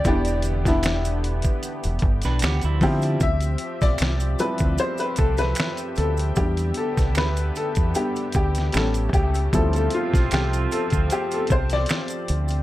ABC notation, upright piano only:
X:1
M:4/4
L:1/16
Q:"Swing 16ths" 1/4=76
K:Ddor
V:1 name="Upright piano"
[E,B,DG]2 z [E,B,DE]6 z4 z [F,CEG]2 | e3 d3 B2 c B A B3 A2 | G2 A2 B2 A2 G2 G2 A2 G2 | A A F2 G2 A2 G A c d4- d |]
V:2 name="Upright piano"
z16 | z6 [F,G,CE]8- [F,G,CE]2 | [G,B,D]6 z2 [G,B,D]2 z2 [G,B,^C]4 | [F,G,CE]16 |]